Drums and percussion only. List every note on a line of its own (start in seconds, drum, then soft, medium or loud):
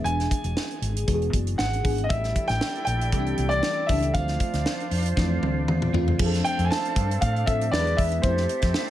0.05 closed hi-hat medium
0.20 snare soft
0.20 closed hi-hat soft
0.31 kick medium
0.31 closed hi-hat medium
0.44 closed hi-hat medium
0.57 snare loud
0.71 closed hi-hat soft
0.82 closed hi-hat medium
0.96 closed hi-hat medium
1.08 kick medium
1.08 closed hi-hat medium
1.22 closed hi-hat soft
1.33 kick medium
1.33 closed hi-hat medium
1.47 closed hi-hat soft
1.59 snare medium
1.73 closed hi-hat soft
1.85 kick medium
1.85 open hi-hat medium
1.98 closed hi-hat soft
2.10 kick loud
2.10 closed hi-hat medium
2.24 snare soft
2.24 closed hi-hat soft
2.36 kick medium
2.36 closed hi-hat medium
2.49 snare soft
2.49 closed hi-hat soft
2.61 snare loud
2.75 closed hi-hat soft
2.87 closed hi-hat medium
3.01 closed hi-hat medium
3.12 kick medium
3.12 closed hi-hat medium
3.26 closed hi-hat soft
3.38 closed hi-hat medium
3.51 closed hi-hat soft
3.63 snare loud
3.89 kick medium
3.89 open hi-hat medium
4.02 closed hi-hat soft
4.15 kick loud
4.15 closed hi-hat medium
4.28 snare soft
4.28 closed hi-hat soft
4.40 kick medium
4.40 closed hi-hat medium
4.53 snare soft
4.53 closed hi-hat soft
4.66 snare loud
4.80 closed hi-hat soft
4.91 open hi-hat medium
5.06 closed hi-hat medium
5.17 kick medium
5.17 snare medium
5.43 high tom medium
5.68 mid tom medium
5.82 mid tom medium
5.94 floor tom loud
6.08 floor tom medium
6.19 kick loud
6.19 crash medium
6.34 snare soft
6.34 closed hi-hat soft
6.45 closed hi-hat medium
6.59 closed hi-hat soft
6.72 snare loud
6.85 closed hi-hat soft
6.96 kick medium
6.96 closed hi-hat medium
7.11 closed hi-hat medium
7.22 kick medium
7.22 closed hi-hat medium
7.36 closed hi-hat soft
7.47 kick medium
7.47 closed hi-hat medium
7.61 closed hi-hat soft
7.74 snare loud
7.87 closed hi-hat soft
7.98 kick medium
7.98 open hi-hat medium
8.11 closed hi-hat soft
8.23 kick loud
8.23 closed hi-hat medium
8.37 snare soft
8.49 closed hi-hat medium
8.62 kick medium
8.62 snare soft
8.62 closed hi-hat medium
8.74 snare loud